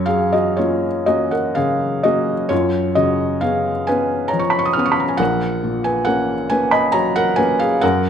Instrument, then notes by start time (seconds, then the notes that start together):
felt piano
Already playing: F#2 F#4 C#5
0.06 F#3 G#4 F5
0.33 F#4 D#5
0.57 A#3 C#4 F4 C#5
1.06 A#3 C#4 F#4 D#5
1.31 A#4 F#5
1.55 C#3 G#4 F5
2.03 A#3 C#4 F#4 D#5
2.49 F#2 F4 C#5
2.95 C#3 F#4 D#5
3.41 B3 C#4 G#4 F5
3.87 B3 C#4 B4 G#5
4.28 C#5 A#5
4.33 F3
4.39 C#6
4.50 B5
4.59 C#6
4.66 D#6
4.73 B3 C#4 F6
4.79 D#6
4.86 C#6
4.92 B5
5.00 A#5
5.09 G#5
5.17 A#1 A#4 F#5
5.64 A#2
5.84 B4 G#5
6.05 A#3 C#4 A#4 F#5
6.50 A#3 C#4 B4 G#5
6.71 D#5 B5
6.92 F#3 C#5 A#5
7.16 A#4 F#5
7.36 A#3 C#4 B4 G#5
7.59 G#4 F5
7.81 F#2 A#4 F#5